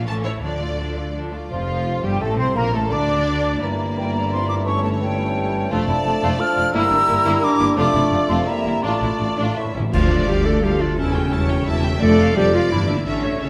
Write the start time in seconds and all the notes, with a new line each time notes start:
0.06 A1 A2 E3 C#4 A4 A5
0.25 A3 E4 C#5
0.42 D2 D3 F3 D4 A4 D5
0.61 A3 F4 D5
0.80 F3 D4 A4
0.97 A3 F4 D5
1.15 F3 D4 A4
1.33 A3 F4 D5
1.50 F1 F2 F3 F4 F5
2.04 G1 G2 G3 G4 G5
2.21 A1 A2 A3 A4 A5
2.38 C2 C3 C4 C5 C6
2.55 A#1 A#2 A#3 A#4 A#5
2.74 A1 A2 A3 A4 A5
2.92 D2 D3 D4 D5 D6
3.62 G1 G2 E3 A#3 D4 E4 A#4 D5
3.98 E3 G3 D4 A#4 G5
4.15 A#3 A#5
4.32 C4 C6
4.49 D4 D6
4.65 E3 A3 C#4 A4 C#5 C#6
4.83 A3 A5
5.01 E3 G3 C#4 A4 G5
5.70 F1 F2 F3 A3 D4 F4 A4 D5 A5
5.88 F1 F2 A3 E4
6.05 F1 F2 A3 F4
6.22 F1 F2 A3 F4
6.39 F3 D4 F4 A4 F6
6.56 F1 F2 A3 F4
6.73 G1 G2 G3 A#3 E4 A#4 E6
6.90 G1 G2 A#3 D4
7.08 G1 G2 A#3 E4
7.25 G1 G2 A#3 E4
7.43 D4 D6
7.60 G1 G2 A#3 E4
7.77 F1 F2 A3 D4 F4 A4 D5 D6
7.94 F1 F2 A3 E4
8.11 F1 F2 A3 F4
8.29 F1 F2 A3 C4 F4 C6
8.47 G3 A#3 E4 A#4 E5 A#5
8.65 G1 G2 A#3 E4
8.82 A1 A2 A3 D4 F4 D5 A5
9.01 A1 A2 D4 E4
9.19 A1 A2 D4 F4
9.37 A1 A2 D4 F4
9.56 A2 A3 E4 C#5 E5
9.65 A2
9.72 A1 A2 C#4 E4
9.80 A2
9.92 D2 F3 F4 D5 F5, concert bass drum, crash
10.10 A3 D4 D5
10.28 D2 F3 G3 F4 G4 F5
10.44 A3 D4 A4 D5
10.62 D2 F3 G3 F4 G4 A4 F5
10.80 F3 A3 D4 F4 D5
10.97 E1 E2 C#3 G3 C#4 E4 A5
11.15 A3 C#4 G5
11.32 E1 E2 G3 E4 C#5 A5
11.49 A3 C#4 G5
11.66 E1 E2 G3 E4 E5 A5
11.84 A3 C#4 G5
12.01 F1 F2 F3 A3 D4 A4 D5
12.19 A3 F4 F5
12.36 F1 F2 F3 G3 D4 G4 D5
12.53 F3 A3 F4 F5
12.70 G1 G2 E3 G3 D4 E4 D5
12.88 D3 A#3 D4 E4 E5
13.06 A1 D3 C#4 D4 A4 C#5 E5
13.23 A3 C#5 E5
13.41 A1 C#3 C#4 A4 C#5 E5